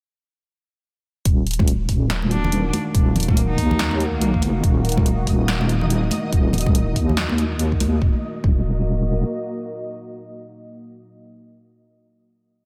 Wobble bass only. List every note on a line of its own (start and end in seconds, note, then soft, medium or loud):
1.25 1.87 D#1 loud
1.89 2.72 D#1 medium
2.94 3.57 D#1 loud
3.58 4.41 D#2 loud
4.43 4.62 F#1 medium
4.63 5.26 D#1 loud
5.27 6.10 D#1 medium
6.33 6.95 D#1 loud
6.96 8.00 D#2 loud
8.02 8.15 D#1 loud
8.44 9.24 D#1 loud